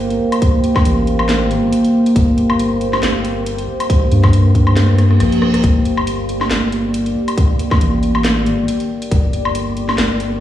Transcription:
Already playing: G1 A#3 G4 C5
0.10 closed hi-hat
0.32 closed hi-hat, low woodblock
0.42 kick, closed hi-hat
0.64 closed hi-hat
0.76 kick, snare, low woodblock
0.85 A1, closed hi-hat
1.07 closed hi-hat
1.19 low woodblock
1.29 snare, clap, closed hi-hat
1.46 G#1
1.51 closed hi-hat
1.73 closed hi-hat
1.85 closed hi-hat
2.06 closed hi-hat
2.16 G1, kick, closed hi-hat
2.38 closed hi-hat
2.50 low woodblock
2.59 closed hi-hat
2.81 closed hi-hat
2.93 snare, low woodblock
3.03 G1, snare, clap, closed hi-hat
3.25 closed hi-hat
3.46 closed hi-hat
3.58 closed hi-hat
3.80 closed hi-hat, low woodblock
3.90 kick, closed hi-hat
4.12 G2, closed hi-hat
4.24 kick, snare, low woodblock
4.33 closed hi-hat
4.55 G2, kick, closed hi-hat
4.67 low woodblock
4.77 cross-stick, snare, closed hi-hat, reverse cymbal
4.89 cross-stick
4.98 cross-stick, closed hi-hat
5.11 cross-stick
5.20 A#1, cross-stick, closed hi-hat
5.32 closed hi-hat
5.42 cross-stick
5.54 cross-stick, closed hi-hat
5.64 G1 D5, kick, closed hi-hat
5.85 closed hi-hat
5.97 low woodblock
6.07 closed hi-hat
6.29 closed hi-hat
6.41 snare, low woodblock
6.51 G1, snare, clap, closed hi-hat
6.72 closed hi-hat
6.94 closed hi-hat
7.06 closed hi-hat
7.28 closed hi-hat, low woodblock
7.38 kick, closed hi-hat
7.59 closed hi-hat
7.71 kick, snare, low woodblock
7.81 A1, closed hi-hat
8.03 closed hi-hat
8.15 low woodblock
8.25 snare, clap, closed hi-hat
8.41 G#1
8.46 closed hi-hat
8.68 closed hi-hat
8.80 closed hi-hat
9.02 closed hi-hat
9.11 G1, kick, closed hi-hat
9.33 closed hi-hat
9.45 low woodblock
9.55 closed hi-hat
9.77 closed hi-hat
9.89 snare, low woodblock
9.98 G1, snare, clap, closed hi-hat
10.20 closed hi-hat

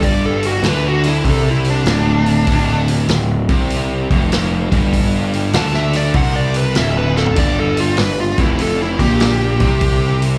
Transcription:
Already playing: G1 G2
0.02 D5, kick, open hi-hat
0.26 A4
0.43 F#4, open hi-hat
0.63 D2 D3, snare, open hi-hat
0.68 B4
0.88 F#4
1.03 snare, open hi-hat
1.09 E4
1.24 C2 C3, kick, open hi-hat
1.29 A4
1.50 E4
1.64 open hi-hat
1.70 D4
1.86 D1 D2, snare, open hi-hat
2.26 open hi-hat
2.47 D1 D2, kick, open hi-hat
2.88 open hi-hat
3.08 D1 D2, snare, open hi-hat
3.49 C2 C3, kick, open hi-hat
3.70 open hi-hat
4.10 F1 F2, kick, open hi-hat
4.32 snare, open hi-hat
4.71 G1 G2, kick, open hi-hat
4.93 kick, open hi-hat
5.33 open hi-hat
5.53 D2 D3 A5, snare, open hi-hat
5.74 E5, snare
5.93 D5, snare, open hi-hat
6.14 C2 C3 F#5, kick, open hi-hat
6.36 D5
6.54 B4, open hi-hat
6.75 D1 D2 E5, snare, open hi-hat
6.97 B4
7.16 A4, snare
7.26 floor tom
7.36 G1 G2 D5, kick, open hi-hat, splash
7.59 A4
7.77 F4, open hi-hat
7.97 G1 G2 B4, snare, open hi-hat
8.20 F4
8.38 F1 F2 E4, kick, open hi-hat
8.59 A4, open hi-hat
8.81 E4
8.99 A#1 A#2 G4, kick, open hi-hat
9.20 snare, open hi-hat
9.60 C2 C3, kick, open hi-hat
9.81 kick, open hi-hat
10.22 open hi-hat

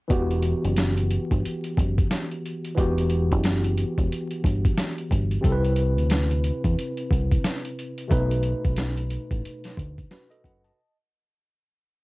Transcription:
0.08 E1 E3 B3 F#4, kick, closed hi-hat
0.13 G4
0.31 closed hi-hat
0.43 closed hi-hat
0.65 F#1, closed hi-hat
0.77 snare, closed hi-hat
0.97 closed hi-hat
1.11 closed hi-hat
1.31 G1, kick, closed hi-hat
1.45 closed hi-hat
1.64 closed hi-hat
1.77 F#1, kick, closed hi-hat
1.98 kick, closed hi-hat
2.11 snare, closed hi-hat
2.31 closed hi-hat
2.45 closed hi-hat
2.64 closed hi-hat
2.75 E1 E3 B3 F#4, kick, closed hi-hat
2.79 G4
2.98 closed hi-hat
3.09 closed hi-hat
3.31 F#1, kick, closed hi-hat
3.43 snare, closed hi-hat
3.64 closed hi-hat
3.77 closed hi-hat
3.98 E1, kick, closed hi-hat
4.12 closed hi-hat
4.31 closed hi-hat
4.44 G1, kick, closed hi-hat
4.65 kick, closed hi-hat
4.78 snare, closed hi-hat
4.98 closed hi-hat
5.11 G1, kick, closed hi-hat
5.31 closed hi-hat
5.41 C2 C3 C4 E4, kick, closed hi-hat
5.46 A4
5.52 B4
5.64 closed hi-hat
5.76 closed hi-hat
5.98 D2, closed hi-hat
6.10 snare, closed hi-hat
6.31 closed hi-hat
6.44 closed hi-hat
6.64 E2, kick, closed hi-hat
6.79 closed hi-hat
6.97 closed hi-hat
7.11 C2, kick, closed hi-hat
7.32 kick, closed hi-hat
7.44 snare, closed hi-hat
7.65 closed hi-hat
7.79 closed hi-hat
7.98 closed hi-hat
8.08 B1 B2 A3 D#4, kick, closed hi-hat
8.12 B4
8.31 closed hi-hat
8.43 closed hi-hat
8.65 B1, kick, closed hi-hat
8.77 snare, closed hi-hat
8.98 closed hi-hat
9.11 closed hi-hat
9.31 A1, kick, closed hi-hat
9.45 closed hi-hat
9.64 snare, closed hi-hat
9.77 D2, kick, closed hi-hat
9.98 kick, closed hi-hat
10.11 F#4 B4, snare, closed hi-hat
10.30 A4 D#5, closed hi-hat
10.44 F#1 B4 F#5, kick, closed hi-hat
10.64 D#5 A5, closed hi-hat

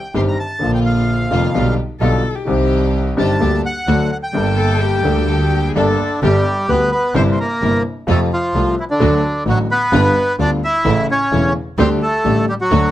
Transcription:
Already playing: G5
0.14 G1 G2 D#3 G3 C4 D#4 G4 C6
0.28 A#5
0.39 A5
0.59 A#1 A#2 D3 F3 A#3 D4 F4
0.75 G5
0.86 F5
1.31 F1 F2 D3 F3 A#3 D4 F4
1.54 B1 B2 D3 G3 B3 F4 G4
2.00 B1 B2 D3 G3 B3 F4 G4 A4
2.35 G4
2.45 C2 C3 D#3 G3 C4 D#4 G4
2.50 G4
3.17 G1 G2 D#3 G3 C4 D#4 G4 A5
3.40 D2 D3 G3 A#3 D4 G4
3.66 F#5
3.87 D2 D3 F#3 A3 D4 F#4 A4
4.12 F#5
4.23 G5
4.33 G1 G2 G3 A#3 D4 G4 A4
4.57 A4
4.81 G4
5.02 D2 D3 G3 A#3 D4 G4 A4
5.29 G4
5.69 G#4
5.75 G1 G2 D3 G3 A#3 D4 G4 A4
6.22 G1 G2 D3 G3 B3 D4 G4
6.68 D2 D3 G3 B3 D4 G4 B4
6.92 B3 B4
7.15 G1 G2 C3 G3 A#3 C4 E4 C5
7.32 C5
7.40 A#3 A#4
7.62 G1 G2 C3 G3 A#3 C4 E4
8.07 F2 C3 F3 A3 C4 F4 A4
8.33 F3 F4
8.54 C2 C3 F3 A3 C4 F4
8.80 E3 E4
8.90 D3 D4
9.00 D2 D3 F#3 A3 D4 F#4
9.45 A1 A2 D3 F#3 A3 D4 F#4
9.71 B3 B4
9.92 G1 G2 D3 G3 B3 F4
10.39 D2 D3 G3 B3 D4 F4 D5
10.64 E4 E5
10.85 A1 A2 C#3 E3 A3 C#4 E4
11.11 C#4 C#5
11.32 E1 E2 C#3 E3 A3 C#4 E4
11.78 D2 D3 G3 A3 C4 D4 G4 C5
12.03 A3 A4
12.24 A1 A2 D3 G3 A3 D4 G4
12.49 G3 G4
12.61 F#3 F#4
12.71 D2 D3 F#3 A3 D4 F#4

